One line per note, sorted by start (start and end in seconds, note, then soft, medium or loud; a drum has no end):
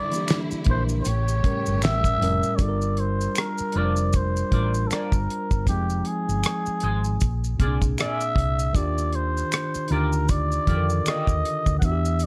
0.00 1.04 D3 medium
0.00 1.04 G3 medium
0.00 1.04 E4 medium
0.00 0.39 D5 loud
0.11 0.62 E3 medium
0.11 0.63 A#3 medium
0.11 0.64 D4 medium
0.11 closed hi-hat soft
0.11 maracas soft
0.16 0.65 G4 medium
0.28 finger snap medium
0.28 snare loud
0.28 closed hi-hat medium
0.28 maracas medium
0.51 muted fingered electric bass stroke soft
0.51 maracas soft
0.64 1.00 A#1 medium
0.64 1.04 E3 medium
0.64 1.05 A#3 medium
0.64 1.06 D4 medium
0.64 kick loud
0.64 closed hi-hat medium
0.70 1.07 A#4 medium
0.70 0.84 C5 medium
0.89 maracas soft
1.01 2.57 C#3 medium
1.01 2.57 A3 medium
1.01 2.57 G4 medium
1.01 1.09 C5 medium
1.01 maracas medium
1.06 1.39 A1 medium
1.06 1.83 C#5 medium
1.06 closed hi-hat medium
1.28 maracas soft
1.41 2.15 A2 medium
1.41 2.15 G3 medium
1.41 2.16 C#4 medium
1.41 muted fingered electric bass stroke soft
1.41 kick medium
1.41 closed hi-hat medium
1.46 2.17 A#4 medium
1.66 1.83 G1 medium
1.66 maracas soft
1.82 2.16 A1 medium
1.82 2.58 E5 loud
1.82 finger snap medium
1.82 snare loud
1.82 closed hi-hat medium
1.82 maracas medium
2.04 kick medium
2.04 maracas soft
2.18 2.41 F1 medium
2.18 2.56 A2 medium
2.18 2.56 G3 medium
2.18 2.57 C#4 medium
2.22 2.58 A#4 medium
2.22 closed hi-hat medium
2.43 maracas soft
2.56 3.26 G1 medium
2.56 3.67 G3 loud
2.56 3.67 D4 medium
2.56 2.63 C#5 medium
2.56 kick loud
2.56 closed hi-hat medium
2.56 maracas medium
2.60 3.68 F4 medium
2.60 2.68 A4 medium
2.60 3.01 D5 loud
2.69 3.72 A#4 loud
2.81 maracas soft
2.97 3.41 C5 medium
2.97 closed hi-hat soft
3.21 maracas soft
3.35 3.79 A#4 medium
3.35 finger snap medium
3.35 cross-stick loud
3.35 closed hi-hat medium
3.35 maracas medium
3.58 muted fingered electric bass stroke soft
3.58 maracas soft
3.72 4.42 F1 medium
3.72 4.46 G3 medium
3.72 4.47 D4 medium
3.72 3.93 D4 medium
3.72 3.93 F4 medium
3.72 closed hi-hat medium
3.77 4.48 F4 medium
3.77 3.93 A#4 medium
3.77 3.84 A#4 medium
3.77 3.93 D5 medium
3.77 4.18 D5 loud
3.85 4.52 C5 medium
3.96 maracas soft
4.13 4.89 C5 medium
4.13 kick medium
4.13 closed hi-hat medium
4.13 maracas medium
4.36 maracas soft
4.50 4.86 A1 medium
4.50 5.59 G3 medium
4.50 5.60 D4 medium
4.50 4.70 D4 medium
4.50 4.70 F4 medium
4.50 5.61 F4 medium
4.50 4.70 A#4 medium
4.50 4.70 D5 medium
4.50 kick medium
4.50 closed hi-hat medium
4.55 4.61 A#4 medium
4.61 5.65 C5 medium
4.74 maracas soft
4.87 4.95 A4 medium
4.87 finger snap medium
4.87 muted fingered electric bass stroke soft
4.87 maracas medium
4.91 5.13 D4 medium
4.91 5.13 F4 medium
4.91 5.14 A#4 medium
4.91 5.68 A#4 medium
4.91 5.14 D5 medium
4.91 cross-stick medium
4.91 closed hi-hat medium
5.12 5.26 G1 medium
5.12 kick medium
5.12 maracas soft
5.30 closed hi-hat medium
5.51 5.67 G1 medium
5.51 kick medium
5.51 maracas soft
5.65 6.01 F1 medium
5.65 7.10 F3 medium
5.65 7.11 C4 medium
5.65 7.12 D#4 medium
5.65 6.08 G4 medium
5.65 kick loud
5.65 closed hi-hat medium
5.65 maracas medium
5.70 7.13 G#3 loud
5.90 maracas soft
6.05 7.60 G#4 medium
6.05 closed hi-hat medium
6.29 6.42 G1 medium
6.29 maracas soft
6.44 finger snap medium
6.44 cross-stick loud
6.44 closed hi-hat medium
6.44 maracas medium
6.66 muted fingered electric bass stroke soft
6.66 maracas soft
6.80 7.16 G#1 medium
6.80 7.00 D#4 medium
6.80 7.01 G#4 medium
6.80 7.01 C5 medium
6.80 7.01 D#5 medium
6.80 closed hi-hat medium
7.04 maracas soft
7.20 7.55 A#1 medium
7.20 kick medium
7.20 closed hi-hat medium
7.20 maracas medium
7.44 maracas soft
7.57 7.93 C2 medium
7.57 8.66 A#2 medium
7.57 8.67 A#3 medium
7.57 7.77 A#3 medium
7.57 7.67 C4 medium
7.57 7.78 F4 medium
7.57 7.78 G#4 medium
7.57 kick medium
7.57 closed hi-hat medium
7.61 8.69 G#4 medium
7.61 7.78 D5 medium
7.67 8.71 D4 medium
7.82 kick medium
7.82 maracas soft
7.98 8.21 A#3 medium
7.98 8.21 F4 medium
7.98 8.21 G#4 medium
7.98 8.22 D5 medium
7.98 8.78 E5 loud
7.98 finger snap medium
7.98 cross-stick loud
7.98 closed hi-hat medium
7.98 maracas medium
8.21 maracas soft
8.36 8.70 C2 medium
8.36 kick medium
8.36 closed hi-hat medium
8.59 maracas soft
8.73 9.42 D#2 loud
8.73 9.82 D#3 loud
8.73 9.83 D4 medium
8.73 9.84 F4 medium
8.73 9.17 D5 loud
8.73 kick loud
8.73 closed hi-hat medium
8.73 maracas medium
8.78 9.84 G4 loud
8.98 maracas soft
9.13 9.93 C5 medium
9.13 closed hi-hat medium
9.37 maracas soft
9.52 finger snap medium
9.52 cross-stick loud
9.52 closed hi-hat medium
9.52 maracas medium
9.74 muted fingered electric bass stroke soft
9.74 maracas soft
9.88 10.57 D2 medium
9.88 10.08 A#3 medium
9.88 10.62 D4 medium
9.88 10.61 D#4 medium
9.88 10.63 F4 medium
9.88 10.08 F4 medium
9.88 10.32 A#4 medium
9.88 closed hi-hat medium
9.92 10.09 G4 medium
9.92 10.64 G4 medium
9.92 10.09 D5 medium
10.12 maracas soft
10.28 11.09 D5 loud
10.28 kick medium
10.28 closed hi-hat medium
10.28 maracas medium
10.52 maracas soft
10.65 11.01 F2 medium
10.65 11.75 D3 medium
10.65 11.74 D#3 medium
10.65 10.85 A#3 medium
10.65 10.85 F4 medium
10.65 11.76 F4 medium
10.65 10.85 G4 medium
10.65 kick medium
10.65 closed hi-hat medium
10.69 10.76 A4 medium
10.69 10.86 D5 medium
10.76 11.80 A#4 medium
10.90 maracas soft
11.06 11.28 A#3 medium
11.06 11.28 F4 medium
11.06 11.29 G4 medium
11.06 11.29 D5 medium
11.06 11.78 D#5 loud
11.06 finger snap medium
11.06 muted fingered electric bass stroke soft
11.06 cross-stick loud
11.06 closed hi-hat medium
11.06 maracas medium
11.27 11.42 D#2 medium
11.27 kick medium
11.27 maracas soft
11.45 closed hi-hat medium
11.66 11.80 D2 medium
11.66 kick medium
11.66 maracas soft
11.79 12.26 E2 medium
11.79 12.26 E3 loud
11.79 12.26 B3 medium
11.79 11.87 F#5 medium
11.79 kick loud
11.79 closed hi-hat medium
11.79 maracas medium
11.84 12.26 D4 medium
11.84 11.92 F#4 medium
11.84 12.26 E5 loud
11.92 12.26 G4 loud
12.05 maracas soft
12.19 closed hi-hat medium
12.19 maracas soft